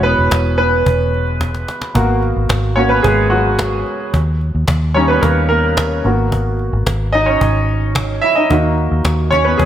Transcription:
Already playing: E1 G#3 C#4 E4 F#4 C#5
0.03 B3 B4, cajon slap
0.18 E1
0.31 E1, cajon bass, cajon slap
0.58 B3 B4, cajon slap
0.86 E1, cajon bass
1.14 cajon slap
1.27 cajon slap
1.41 cajon bass, cajon slap
1.54 cajon slap
1.68 cajon slap
1.82 cajon slap
1.94 G#1 A#3 B3 F#4, cajon bass
2.22 cajon slap
2.36 G#1
2.49 G#1, cajon bass, cajon slap
2.76 A#3 B3 C#4 F#4 C#5, cajon slap
2.89 B3 B4
3.03 G#1 G#3 G#4, cajon bass
3.30 F#3 F#4, cajon slap
3.45 cajon slap
3.59 cajon bass, cajon slap
3.73 cajon slap
3.86 cajon slap
4.14 D#2, cajon bass
4.41 cajon slap
4.55 D#2
4.68 D#2, cajon bass, cajon slap
4.94 G3 A#3 C#4 D#4 C#5, cajon slap
5.08 B3 B4
5.21 D#2 A#3 A#4, cajon bass
5.49 A#3 A#4, cajon slap
5.64 cajon slap
5.77 cajon bass, cajon slap
5.91 cajon slap
6.04 G#1 A#3 B3 F#4, cajon slap
6.32 cajon bass
6.59 cajon slap
6.73 G#1
6.86 G#1, cajon bass, cajon slap
7.13 D#4 D#5, cajon slap
7.26 C#4 C#5
7.41 G#1, cajon bass
7.69 cajon slap
7.82 cajon slap
7.95 cajon bass, cajon slap
8.10 cajon slap
8.22 E4 E5, cajon slap
8.35 D#4 D#5
8.50 D#2 A#3 D#4 F#4, cajon bass
8.78 cajon slap
8.92 D#2
9.05 D#2, cajon bass, cajon slap
9.31 C#4 C#5, cajon bass, cajon slap
9.45 B3 B4
9.58 D#2 G#3 G#4, cajon bass

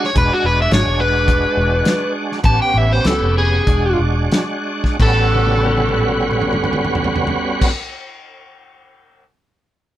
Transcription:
Already playing: G#3 D4 F#5
0.04 C#5, snare
0.15 E1 G#3 D4 F#4 B4, kick, closed hi-hat
0.33 F#4
0.44 E1 B4
0.62 E5
0.71 G#1 C#5, snare, closed hi-hat
0.87 E1
1.00 B4
1.28 kick, closed hi-hat
1.57 E1
1.85 snare, closed hi-hat
2.32 snare
2.43 A1 B3 C#4 G4 A5, kick, closed hi-hat
2.62 G5
2.74 A1 E5
2.93 C5
3.05 C#2 A4, snare, closed hi-hat
3.21 F1
3.38 G#4
3.66 E1 G#3 D4 F#4, kick, closed hi-hat
3.99 E1
4.32 snare, closed hi-hat
4.84 kick, snare
4.99 A1 G3 B3 C#4 F#4 A4, kick, crash
5.34 high tom
5.46 high tom
5.57 high tom
5.66 high tom
5.77 high tom
5.89 mid tom
5.99 mid tom
6.09 mid tom
6.21 mid tom
6.31 mid tom
6.41 mid tom
6.53 mid tom
6.64 mid tom
6.73 mid tom
6.85 mid tom
6.95 floor tom
7.04 floor tom
7.16 floor tom
7.27 floor tom
7.62 kick, crash

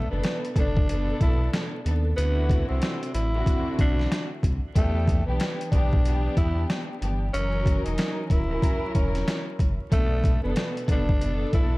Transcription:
0.11 F#1 B2 B3 D4 A4
0.24 snare, closed hi-hat
0.45 closed hi-hat
0.54 F#1 B2 B3 D4 A4, kick, closed hi-hat
0.59 D4
0.77 kick
0.88 B2 B3 D4 A4, closed hi-hat
1.21 B1 E4, kick, closed hi-hat
1.53 snare, closed hi-hat
1.85 D#2 B2 B3 D4 A4, closed hi-hat
2.15 D2 C3 D3 B3 E4 F#4, closed hi-hat
2.50 kick, closed hi-hat
2.68 C2 C4
2.82 snare, closed hi-hat
3.03 closed hi-hat
3.14 A1 E4, closed hi-hat
3.34 D3 C4 E4 F#4
3.46 kick, closed hi-hat
3.79 B1 D4, kick, closed hi-hat
3.99 snare
4.12 snare, closed hi-hat
4.43 C2, kick, closed hi-hat
4.75 E2 E3 A3 B3 D4 G4, kick, closed hi-hat
5.08 kick, closed hi-hat
5.26 B1 E3 B3 D4 G4
5.40 snare, closed hi-hat
5.61 closed hi-hat
5.71 B1 E3 B3 D4 G4, kick, closed hi-hat
5.93 kick
6.04 E3 B3 D4 G4, closed hi-hat
6.37 E2 E4, kick, closed hi-hat
6.70 snare, closed hi-hat
7.01 G1 E3 B3 D4 G4, closed hi-hat
7.33 F#1 E3 F#3 C#4 A#4, closed hi-hat
7.66 kick, closed hi-hat
7.84 E1 D#4, closed hi-hat
7.98 snare, closed hi-hat
8.30 D1 E4, kick, closed hi-hat
8.49 F#3 C#4 E4 A#4
8.62 kick, closed hi-hat
8.95 E1 C#4, kick, closed hi-hat
9.15 snare, closed hi-hat
9.28 snare, closed hi-hat
9.59 F#1, kick, closed hi-hat
9.91 B1 B2 A3 B3 D4 A4, kick, closed hi-hat
10.24 kick, closed hi-hat
10.43 F#1 B2 B3 D4 A4
10.56 snare, closed hi-hat
10.77 closed hi-hat
10.87 F#1 B2 B3 D4 A4, kick, closed hi-hat
10.91 D4
11.09 kick
11.20 B2 B3 D4 A4, closed hi-hat
11.53 B1 E4, kick, closed hi-hat

